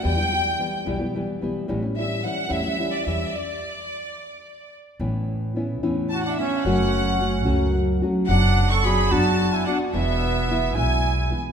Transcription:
<<
  \new Staff \with { instrumentName = "Violin section" } { \time 6/8 \key a \mixolydian \tempo 4. = 73 g''4. r4. | r8 e''8 fis''8 e''8. d''16 e''8 | d''2~ d''8 r8 | \key a \major r2 a''16 fis''16 e''8 |
fis''2 r4 | fis''8. cis'''16 b''8 a''8. gis''16 fis''8 | e''4. gis''4 r8 | }
  \new Staff \with { instrumentName = "Trumpet" } { \time 6/8 \key a \mixolydian r2. | r2. | r2. | \key a \major r2 fis'16 d'16 cis'8 |
cis'2 r4 | d'8. a'16 gis'8 fis'8. e'16 d'8 | b4. e'4 r8 | }
  \new Staff \with { instrumentName = "Nylon-string guitar" } { \time 6/8 \key a \mixolydian <e, b, e g b e'>16 <e g b e'>16 <e g b e'>8 <e g b e'>8 <e, b, e g b e'>16 <e g b e'>16 <e g b e'>8 <e g b e'>8 | <a, e g cis' e'>16 <g cis' e'>16 <e g cis' e'>8 <e g cis' e'>8 <a, e g cis' e'>16 <g cis' e'>16 <e g cis' e'>8 <e g cis' e'>8 | r2. | \key a \major <a, e b cis' e'>4 <e b cis' e'>8 <a, e b cis' e'>4 <b cis' e'>8 |
<fis, cis fis a cis' fis'>4 <fis a cis' fis'>8 <fis, cis fis a cis' fis'>4 <fis a cis' fis'>8 | <fis b d' fis'>4 <fis b d' fis'>8 <fis b d' fis'>4 <b d' fis'>8 | <e, b, e gis b e'>4 <e gis b e'>8 <e, b, e gis b e'>4 <e gis b e'>8 | }
  \new Staff \with { instrumentName = "Upright bass" } { \clef bass \time 6/8 \key a \mixolydian e,4. b,,4 b,,8 | a,,4. e,4 e,8 | r2. | \key a \major a,,4. e,4. |
fis,,4. cis,4. | fis,,4. fis,4. | e,,4. b,,4. | }
>>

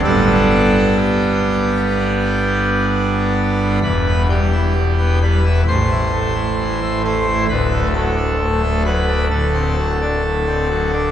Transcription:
<<
  \new Staff \with { instrumentName = "Pipe organ" } { \time 4/4 \key g \major \tempo 4 = 65 a'4 g'2 r4 | b'8 g'4 b'8 c''4. c''8 | b'8 a'4 b'8 a'2 | }
  \new Staff \with { instrumentName = "Pipe organ" } { \clef bass \time 4/4 \key g \major << { <g, g b d'>1 | e,16 b16 g16 e'16 b,16 b16 g16 e'16 a,16 e'16 a16 e'16 e16 e'16 a16 e'16 | d,16 a16 fis16 d'16 a,16 a16 fis16 d'16 d,16 c'16 fis16 d'16 a,16 c'16 fis16 d'16 | } \\ { g,,1 | e,,2 a,,2 | d,,2 d,,2 | } >> }
>>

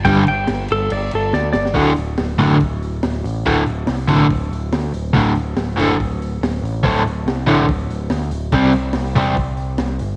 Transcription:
<<
  \new Staff \with { instrumentName = "Electric slide guitar" } { \time 4/4 \key g \major \tempo 4 = 142 g''8 g''8 r8 a'8 d''8 a'8 d''8 d''8 | r1 | r1 | r1 |
r1 | r1 | }
  \new Staff \with { instrumentName = "Overdriven electric guitar" } { \clef bass \time 4/4 \key g \major <g, d g>8 r2. r8 | <d, a, d>8 r4 <d, a, d>8 r2 | <d, a, d>8 r4 <d, a, d>8 r2 | <d, a, d>8 r4 <d, a, d>8 r2 |
<d, a, d>8 r4 <d, a, d>8 r2 | <c g c'>8 r4 <c g c'>8 r2 | }
  \new Staff \with { instrumentName = "Picked electric bass" } { \clef bass \time 4/4 \key g \major g,,8 g,,8 g,,8 g,,8 g,,8 g,,8 d,8 g,,8 | d,,8 d,,8 d,,8 fis,,8 d,,4 d,,8 a,,8 | d,,8 d,,8 c,4 d,,8 d,,8 d,8 d,,8 | d,,8 d,,8 d,,8 fis,,8 d,,4 d,,8 a,,8 |
d,,8 d,,8 c,4 d,,8 d,,8 d,8 d,,8 | c,8 c,8 c,8 e,,8 c,4 c,8 g,,8 | }
  \new DrumStaff \with { instrumentName = "Drums" } \drummode { \time 4/4 <cymc bd>8 cymc8 <cymc sn>8 cymc8 cymc8 cymc8 sn8 sn16 sn16 | <hho bd>16 sn16 hho8 <hho sn>8 hho8 <hho bd>8 hho8 <hho sn>8 hho8 | <hho bd>8 hho8 <hho sn>8 hho8 <hho bd>8 hho8 <hho sn>8 hho8 | <hho bd>8 hho8 <hho sn>8 hho8 <hho bd>8 hho8 <hho sn>8 hho8 |
<hho bd>8 hho8 <hho sn>8 hho8 <hho bd>8 hho8 <hho sn>8 hho8 | <cymc bd>8 hho8 <hho sn>8 hho8 <hho bd>8 hho8 <hho sn>8 hho8 | }
>>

